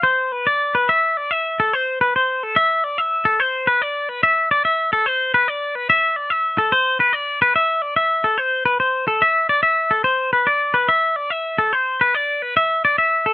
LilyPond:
\new Staff \with { instrumentName = "Clean electric guitar" } { \time 6/8 \key a \minor \tempo 4. = 72 c''8 b'16 d''8 b'16 e''8 d''16 e''8 a'16 | c''8 b'16 c''8 a'16 e''8 d''16 e''8 a'16 | c''8 b'16 d''8 b'16 e''8 d''16 e''8 a'16 | c''8 b'16 d''8 b'16 e''8 d''16 e''8 a'16 |
c''8 b'16 d''8 b'16 e''8 d''16 e''8 a'16 | c''8 b'16 c''8 a'16 e''8 d''16 e''8 a'16 | c''8 b'16 d''8 b'16 e''8 d''16 e''8 a'16 | c''8 b'16 d''8 b'16 e''8 d''16 e''8 a'16 | }